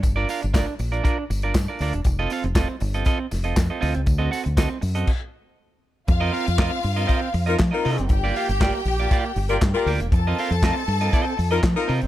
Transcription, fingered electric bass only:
X:1
M:4/4
L:1/16
Q:1/4=119
K:Fmix
V:1 name="Fingered electric bass" clef=bass
G,,,2 z G,,,2 z B,,,2 z2 G,,,2 G,, z D,, =E,,, | F,,,2 z F,,,2 z G,,,2 z2 F,,,2 F,, z D,, ^C,, | D,,2 z D,,2 z ^F,,2 z8 | F,,2 z F,,2 z G,,2 z2 F,,2 F, z C, ^F,,, |
G,,,2 z G,,,2 z B,,,2 z2 G,,,2 G,, z D,, =E,,, | F,,2 z F,,2 z G,,2 z2 F,,2 F, z C, ^F,,, |]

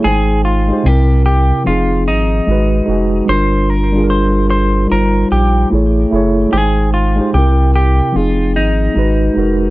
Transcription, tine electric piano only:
X:1
M:4/4
L:1/16
Q:"Swing 16ths" 1/4=74
K:Ablyd
V:1 name="Tine electric piano"
[A,Ecg]2 z [A,EGc] [C,C=EB]3 z [F,C_EA]3 z [A,E_G_c]2 [A,EGA] z | [G,DFB]2 z [G,DFAB]4- [G,DFAB] [G,EFc]3 z [=A,=E^G^c]2 [A,EGc] z | [A,Ecg]2 z [A,EGc] [C,C=EB]3 z [F,C_EA]3 z [A,E_G_c]2 [A,EGB] z |]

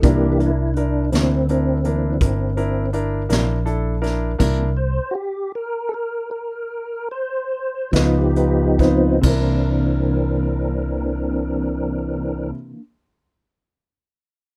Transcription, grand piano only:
X:1
M:12/8
L:1/8
Q:3/8=50
K:Cmix
V:1 name="Grand piano"
[DEB] [DEB] [DEB] [DEB] [DEB] [DEB] [DEB] [DEB] [DEB] [DEB] [DEA] [DEB] | [DEB] z8 [_EF_c] [EFc] [EFc] | [DEB]12 |]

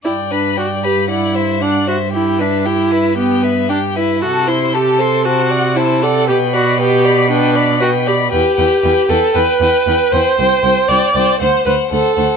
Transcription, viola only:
X:1
M:4/4
L:1/8
Q:1/4=116
K:G
V:1 name="Viola"
E D F G E2 D F | E D E2 B,2 D E | F E G A F2 E A | G F G2 D2 F G |
G3 A B3 c- | c2 d2 c B A2 |]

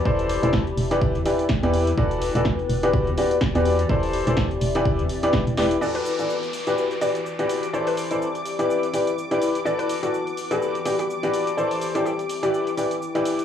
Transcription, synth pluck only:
X:1
M:4/4
L:1/16
Q:"Swing 16ths" 1/4=125
K:Em
V:1 name="Synth pluck"
z16 | z16 | z16 | d B z8 d4 z2 |
d B4- B z8 z2 | d B z F z3 A z2 G G z4 | z3 G G z2 G3 z6 |]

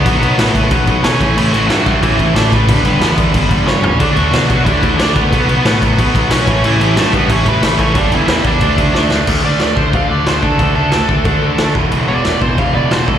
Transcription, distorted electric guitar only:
X:1
M:4/4
L:1/8
Q:1/4=182
K:D
V:1 name="Distorted electric guitar" clef=bass
[B,,F,B,] [B,,F,B,] [B,,F,B,] [B,,F,B,] [B,,F,B,] [B,,F,B,] [B,,F,B,] [A,,E,A,] | [A,,E,A,] [A,,E,A,] [A,,E,A,] [A,,E,A,] [A,,E,A,] [A,,E,A,] [A,,E,A,] [A,,E,A,] | [G,,D,G,] [G,,D,G,] [G,,D,G,] [G,,D,G,] [G,,D,G,] [G,,D,G,] [G,,D,G,] [G,,D,G,] | [D,A,D] [D,A,D] [D,A,D] [D,A,D] [D,A,D] [D,A,D] [D,A,D] [D,A,D] |
[B,,F,B,] [B,,F,B,] [B,,F,B,] [B,,F,B,] [B,,F,B,] [B,,F,B,] [B,,F,B,] [A,,E,A,] | [A,,E,A,] [A,,E,A,] [A,,E,A,] [A,,E,A,] [A,,E,A,] [A,,E,A,] [A,,E,A,] [A,,E,A,] | [G,,D,G,] [G,,D,G,] [G,,D,G,] [G,,D,G,] [D,A,D] [D,A,D] [D,A,D] [D,A,D] | [K:Emix] [D,A,D] [D,A,D] [D,A,D] [D,A,D] [D,A,D] [D,A,D] [D,A,D] [D,A,D] |
[D,A,D] [D,A,D] [D,A,D] [D,A,D] [D,A,D] [D,A,D] [D,A,D] [E,,B,,E,] | [E,,B,,E,] [E,,B,,E,] [E,,B,,E,] [E,,B,,E,] [E,,B,,E,] [E,,B,,E,] [E,,B,,E,] [E,,B,,E,] |]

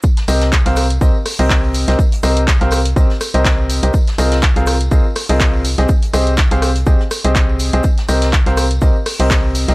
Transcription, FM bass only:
X:1
M:4/4
L:1/16
Q:"Swing 16ths" 1/4=123
K:Cm
V:1 name="FM bass" clef=bass
z2 C,,3 C,,3 C,, z2 C,,4 C,, | z2 C,,3 C,,3 C,, z2 C,,4 C,, | z2 C,,3 C,,3 C,, z2 C,,4 C,, | z2 C,,3 C,,3 C,, z2 C,,4 C,, |
z2 C,,3 C,,3 C,, z2 C,,4 C,, |]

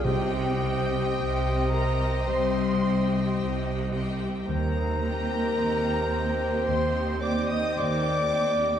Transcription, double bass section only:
X:1
M:4/4
L:1/8
Q:1/4=55
K:Cm
V:1 name="Double bass section" clef=bass
C,,2 C,,2 C,,2 C,,2 | E,,2 E,,2 E,,2 E,,2 |]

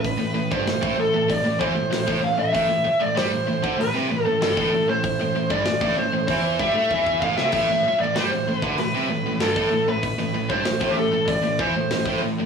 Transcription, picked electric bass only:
X:1
M:4/4
L:1/16
Q:1/4=96
K:Am
V:1 name="Picked electric bass" clef=bass
A,,, A,,, A,,, G,,, A,,, A,,, A,,, A,,, A,,, A,,, E,, A,,, A,,, A,,, A,,, A,,, | A,,, A,,, z A,,, G,, A,,, A,,, D,, A,,, C,, A,,, A,,, G,,, A,,, A,,, A,,,- | A,,, A,,, A,,, G,,, A,,, A,,, A,,, A,,, E,,2 G,, A,, E,,2 A,,, C,, | A,,, A,,, z A,,, G,, A,,, A,,, D,, A,,, C,, A,,, A,,, G,,, A,,, A,,, A,,,- |
A,,, A,,, A,,, G,,, A,,, A,,, A,,, A,,, A,,, A,,, E,, A,,, A,,, A,,, A,,, A,,, |]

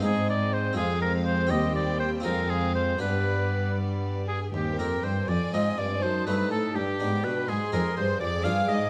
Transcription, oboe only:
X:1
M:6/8
L:1/8
Q:3/8=82
K:Cm
V:1 name="Oboe"
A d c A B c | e d c B A c | =B3 z2 A | G B c d e d |
c =B =A G2 B | A B c d f e |]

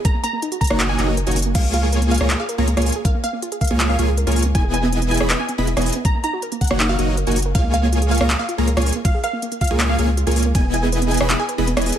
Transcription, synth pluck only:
X:1
M:4/4
L:1/16
Q:1/4=160
K:Db
V:1 name="Synth pluck"
b z b3 z b2 z a2 z4 z | f z f3 z f2 z f2 z4 z | f z f3 z f2 z f2 z4 z | ^g z g3 z g2 z g2 z4 z |
b z b3 z g2 z f2 z4 z | f z f3 z f2 z f2 z4 z | f z f3 z f2 z f2 z4 z | ^g z g3 z g2 z g2 z4 z |]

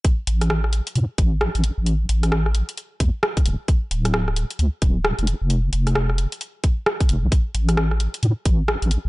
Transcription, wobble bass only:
X:1
M:4/4
L:1/16
Q:"Swing 16ths" 1/4=132
K:Flyd
V:1 name="Wobble bass" clef=bass
z2 A,,,4- A,,, z A,, z A,,,3 A,,, z A,,,- | A,,,2 A,,,4- A,,, z3 E,, z2 D,, D,,, z | z2 D,,,4- D,,, z D,, z D,,,3 F,,, z F,,,- | F,,,2 F,,,4- F,,, z6 z F,,, C,, |
z2 A,,,4- A,,, z A,, z A,,,3 A,,, z A,,, |]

